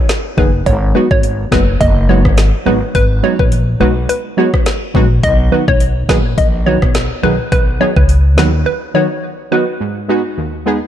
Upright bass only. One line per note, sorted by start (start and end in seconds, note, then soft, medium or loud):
0.38 0.62 F#1 medium
0.66 0.91 G#1 loud
1.11 1.47 G#1 medium
1.52 1.77 F#1 loud
1.81 2.25 F#1 loud
2.25 2.50 G#1 medium
2.66 2.80 G#1 loud
2.95 3.20 G#1 loud
3.39 3.75 A#1 medium
3.80 4.05 B1 loud
4.95 5.20 A#1 medium
5.23 5.48 B1 loud
5.68 6.04 B1 loud
6.09 6.34 A#1 medium
6.38 6.76 A#1 medium
6.82 7.07 B1 loud
7.23 7.37 B1 medium
7.52 7.77 B1 loud
7.96 8.38 C#2 medium
8.38 8.62 D#2 loud